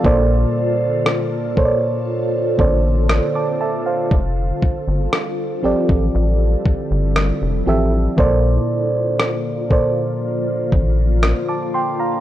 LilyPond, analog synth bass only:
\new Staff \with { instrumentName = "Analog synth bass" } { \clef bass \time 4/4 \key bes \lydian \tempo 4 = 59 bes,,8 r2 a,,8. r8. | f,,8 r16 g,,16 r8 a,,16 a,,16 a,,8 g,,16 g,,8 f,,16 a,,8 | bes,,8 r2 a,,8. r8. | }